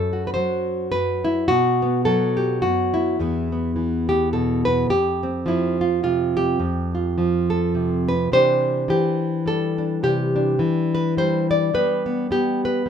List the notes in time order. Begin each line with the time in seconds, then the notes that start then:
Already playing: F#2 F#3 F#4 A4
0.13 F#4
0.27 B4
0.34 F#3 C5
0.92 F#2 B4
1.25 E4
1.48 B2 F#4
1.82 B3
2.05 F#3 A4
2.37 G4
2.62 F#2 F#4
2.94 E4
3.19 E2 E3 B3
3.52 B3
3.76 E3
4.09 B3 G4
4.33 B2 A4
4.65 B3 B4
4.90 F2 G4
5.23 C4
5.46 F3 E4
5.81 F4
6.03 C3 F4
6.37 G4
6.60 F2
6.95 F4
7.18 F3
7.50 A4
7.75 C3
8.09 B4
8.32 C3 E3 D4 G4 C5
8.88 E3 G4
9.46 G3 A4
9.78 D4
10.03 C3 G4
10.36 D4
10.59 E3
10.95 B4
11.17 G3 C5
11.51 D5
11.74 G3 B3 B4
12.06 B3
12.31 B3 G4
12.65 B4
12.86 G3